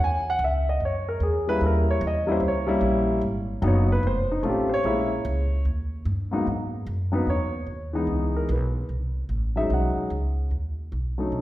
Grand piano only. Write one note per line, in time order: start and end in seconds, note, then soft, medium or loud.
0.04 0.27 G#5 loud
0.30 0.42 F#5 loud
0.44 0.68 E5 medium
0.69 0.81 D#5 medium
0.85 1.08 C#5 medium
1.09 1.21 A#4 medium
1.23 1.47 G#4 medium
1.47 1.99 G3 medium
1.47 1.99 A#3 medium
1.47 2.00 C#4 medium
1.47 2.00 E4 medium
1.47 1.62 B4 loud
1.62 1.65 A4 medium
1.62 1.89 A#4 medium
1.91 2.03 C#5 medium
2.07 2.30 D#5 medium
2.27 2.40 G3 medium
2.27 2.40 A#3 medium
2.27 2.41 C#4 medium
2.27 2.41 E4 medium
2.32 2.44 C5 medium
2.48 2.83 C#5 medium
2.67 3.19 G3 medium
2.67 3.20 A#3 medium
2.67 3.20 C#4 medium
2.67 3.20 E4 medium
3.62 3.86 F#3 medium
3.62 3.87 A#3 medium
3.62 3.87 B3 medium
3.62 3.87 D#4 medium
3.67 3.91 C#5 medium
3.92 4.05 B4 loud
4.07 4.31 C5 loud
4.31 4.44 D#4 medium
4.43 4.67 A3 medium
4.43 4.68 C4 medium
4.43 4.68 C#4 medium
4.43 4.68 F4 medium
4.49 4.72 G4 medium
4.74 5.63 C#5 loud
4.84 5.08 G#3 medium
4.84 5.08 A#3 medium
4.84 5.09 C#4 medium
4.84 5.09 E4 medium
6.31 6.44 G#2 medium
6.31 6.45 F#3 medium
6.31 6.45 A#3 medium
6.31 6.45 B3 medium
6.31 6.45 D#4 medium
7.12 7.25 F#3 medium
7.12 7.25 A#3 medium
7.12 7.26 B3 medium
7.12 7.26 D#4 medium
7.12 7.28 B4 medium
7.30 7.66 C#5 medium
7.93 8.45 E3 medium
7.93 8.46 G#3 medium
7.93 8.46 B3 medium
7.93 8.47 D#4 medium
8.37 8.49 A#4 medium
8.51 8.88 B4 medium
9.56 10.08 F#3 medium
9.56 10.08 G#3 medium
9.56 10.08 C#4 medium
9.56 10.09 D#4 medium
9.56 9.70 E5 medium
9.74 10.10 F#5 medium
11.18 11.41 F#3 medium
11.18 11.41 A3 medium
11.18 11.41 C#4 medium
11.18 11.41 D#4 medium